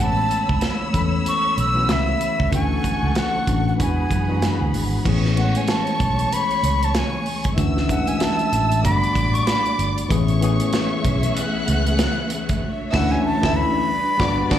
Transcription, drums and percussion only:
0.31 closed hi-hat
0.49 kick
0.61 snare, closed hi-hat
0.94 kick, closed hi-hat
1.26 closed hi-hat
1.58 closed hi-hat
1.89 snare, closed hi-hat
2.21 closed hi-hat
2.40 kick
2.53 kick, closed hi-hat
2.84 kick, closed hi-hat
3.15 snare, closed hi-hat
3.47 kick, closed hi-hat
3.80 kick, closed hi-hat
4.11 kick, closed hi-hat
4.42 snare, closed hi-hat
4.74 open hi-hat
5.05 kick, crash
5.25 snare
5.37 closed hi-hat
5.55 closed hi-hat
5.68 snare, closed hi-hat
5.87 closed hi-hat
6.00 kick, closed hi-hat
6.19 closed hi-hat
6.33 closed hi-hat
6.51 closed hi-hat
6.64 closed hi-hat
6.83 closed hi-hat
6.95 snare, closed hi-hat
7.26 open hi-hat
7.44 kick, closed hi-hat
7.58 kick, closed hi-hat
7.77 snare
7.89 kick, closed hi-hat
8.07 closed hi-hat
8.20 snare, closed hi-hat
8.39 closed hi-hat
8.53 closed hi-hat
8.72 closed hi-hat
8.85 kick, closed hi-hat
9.04 closed hi-hat
9.15 kick, closed hi-hat
9.35 closed hi-hat
9.47 snare, closed hi-hat
9.65 closed hi-hat
9.79 closed hi-hat
9.98 closed hi-hat
10.11 kick, closed hi-hat
10.28 closed hi-hat
10.42 closed hi-hat
10.60 closed hi-hat
10.73 snare, closed hi-hat
11.05 kick, closed hi-hat
11.23 closed hi-hat
11.37 closed hi-hat
11.68 closed hi-hat
11.87 closed hi-hat
11.99 snare, closed hi-hat
12.30 closed hi-hat
12.49 kick, closed hi-hat
12.94 kick, snare, crash
13.43 kick, snare
14.20 kick, snare
14.51 kick, snare, crash

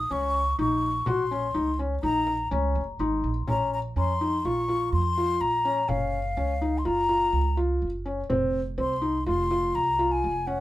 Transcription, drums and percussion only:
0.83 frame drum
1.06 frame drum
1.79 frame drum
2.03 frame drum
2.27 frame drum
2.75 frame drum
3.47 frame drum
4.68 frame drum
5.89 frame drum
7.09 frame drum
8.30 frame drum
9.51 frame drum

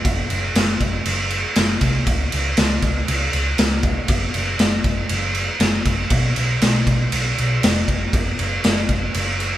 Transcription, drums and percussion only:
0.05 kick, crash
0.30 crash
0.55 snare, crash
0.80 kick, crash
1.05 crash
1.30 crash
1.56 snare, crash
1.81 kick, crash
2.07 kick, crash
2.32 crash
2.57 snare, crash
2.82 kick, crash
3.08 crash
3.33 crash
3.58 snare, crash
3.83 kick, crash
4.08 kick, crash
4.34 crash
4.59 snare, crash
4.84 kick, crash
5.09 crash
5.35 crash
5.60 snare, crash
5.85 kick, crash
6.10 kick, crash
6.36 crash
6.62 snare, crash
6.87 kick, crash
7.12 crash
7.38 crash
7.63 snare, crash
7.88 kick, crash
8.13 kick, crash
8.39 crash
8.64 snare, crash
8.77 snare
8.89 kick, crash
9.14 crash
9.40 crash

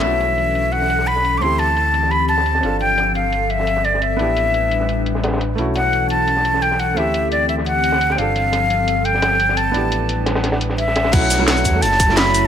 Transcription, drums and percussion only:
0.03 closed hi-hat
0.20 snare, closed hi-hat
0.38 closed hi-hat
0.55 closed hi-hat
0.72 closed hi-hat
0.82 snare
0.90 closed hi-hat
0.99 snare
1.07 closed hi-hat
1.16 snare
1.24 closed hi-hat
1.42 closed hi-hat
1.59 closed hi-hat
1.77 closed hi-hat
1.94 closed hi-hat
2.03 snare
2.11 closed hi-hat
2.29 closed hi-hat
2.38 snare
2.46 closed hi-hat, open hi-hat
2.55 snare
2.63 closed hi-hat
2.80 closed hi-hat
2.98 snare, closed hi-hat
3.15 closed hi-hat
3.33 closed hi-hat
3.50 closed hi-hat
3.59 snare
3.67 closed hi-hat
3.77 snare
3.85 closed hi-hat
3.94 snare
4.02 closed hi-hat
4.19 closed hi-hat
4.36 closed hi-hat
4.54 closed hi-hat
4.71 closed hi-hat
4.81 snare
4.89 closed hi-hat
5.06 closed hi-hat
5.15 snare
5.24 snare, closed hi-hat
5.28 snare, closed hi-hat
5.33 snare, closed hi-hat
5.37 snare, closed hi-hat
5.41 closed hi-hat
5.58 closed hi-hat
5.76 snare, closed hi-hat
5.93 closed hi-hat
6.10 closed hi-hat
6.28 closed hi-hat
6.37 snare
6.44 closed hi-hat
6.54 snare
6.62 closed hi-hat
6.72 snare
6.80 closed hi-hat
6.97 closed hi-hat
7.14 closed hi-hat
7.32 closed hi-hat
7.49 closed hi-hat
7.58 snare
7.66 closed hi-hat
7.84 closed hi-hat
7.92 snare
8.01 closed hi-hat, open hi-hat
8.10 snare
8.18 closed hi-hat
8.36 closed hi-hat
8.52 snare, closed hi-hat
8.70 closed hi-hat
8.87 closed hi-hat
9.05 closed hi-hat
9.14 snare
9.22 snare, closed hi-hat
9.32 snare
9.40 closed hi-hat
9.49 snare
9.57 closed hi-hat
9.74 closed hi-hat
9.92 closed hi-hat
10.09 closed hi-hat
10.26 snare, closed hi-hat
10.35 snare, closed hi-hat
10.44 snare, closed hi-hat
10.52 snare, closed hi-hat
10.61 closed hi-hat
10.70 snare
10.78 closed hi-hat, open hi-hat
10.88 snare
10.96 snare, closed hi-hat
11.04 snare, closed hi-hat
11.13 kick, closed hi-hat, crash
11.30 snare, closed hi-hat, shaker
11.40 cross-stick
11.48 snare, closed hi-hat
11.57 shaker
11.64 kick, closed hi-hat, shaker
11.82 closed hi-hat
11.92 snare
12.00 kick, closed hi-hat, shaker
12.09 snare
12.16 snare, closed hi-hat
12.26 snare
12.34 closed hi-hat, shaker

